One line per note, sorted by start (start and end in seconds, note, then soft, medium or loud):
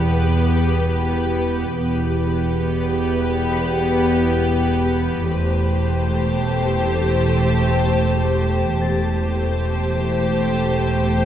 0.00 1.71 E1 soft
0.00 1.71 E2 soft
0.00 1.72 E2 soft
0.00 1.71 B3 soft
0.00 1.71 G4 soft
0.00 1.71 B4 soft
0.00 1.71 B5 soft
0.00 3.16 F#6 soft
1.74 5.24 E1 soft
1.74 5.24 E2 soft
1.74 5.24 B3 soft
1.74 5.24 G4 soft
1.74 5.24 B4 soft
1.74 5.24 B5 soft
3.52 5.64 B5 soft
3.52 5.64 B6 soft
5.28 8.77 E1 soft
5.28 8.77 E2 soft
5.28 8.78 E2 soft
5.28 8.77 A3 soft
5.28 8.77 G4 soft
5.28 8.78 G4 soft
5.28 8.77 C5 soft
5.28 8.80 C5 soft
5.28 8.80 A5 soft
8.81 11.25 E1 soft
8.81 11.25 E2 soft
8.81 11.25 A3 soft
8.81 11.25 G4 soft
8.81 11.25 C5 soft
8.81 11.25 A5 soft
8.81 11.25 A6 soft